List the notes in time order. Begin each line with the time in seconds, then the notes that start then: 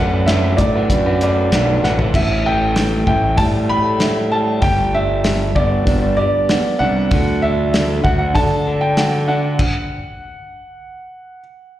Already playing: F#2 F#3 A3 F#5
0.00 D4 F#4 B4
0.26 F#3 A3 D4 F#4 E5, snare, closed hi-hat
0.31 B4
0.44 D4 F#4 B4
0.57 A2 D5, muted clean electric guitar stroke, kick, closed hi-hat
0.75 D4 F#4 B4
0.90 F#2, kick, closed hi-hat
1.06 D4 F#4 B4
1.21 A3 D4 F#4 B4 D5, closed hi-hat
1.52 B1 F#3 A3 D4 F#4 B4, snare, closed hi-hat
1.83 A1 A3 D4 F#4 B4 F#5, snare
1.98 D4 F#4 B4, floor tom
2.14 A1 A2 E5, kick, crash
2.46 A3 G5
2.76 A3, snare, open hi-hat
3.07 A1 E4 G5, kick
3.37 A2 G3 A5, kick, open hi-hat
3.69 A3 B5
4.00 E4, snare, open hi-hat
4.32 G3 A5
4.62 G1 G3 G5, kick, open hi-hat
4.95 D4 E5
5.24 G3, snare, open hi-hat
5.55 G1 B3 D5, kick
5.87 G1 D4, kick, open hi-hat
6.17 G3 D5
6.49 B3, snare, open hi-hat
6.79 C2 D4 F#5
7.11 D2 D3, kick, open hi-hat
7.42 D4 E5
7.74 D3, snare, open hi-hat
8.04 D2 F#4 F#5, kick
8.19 F#5
8.35 D3 D4 A5, kick, open hi-hat
8.68 D3
8.81 G5
8.97 F#4, snare, open hi-hat
9.28 D4 F#5
9.59 kick, crash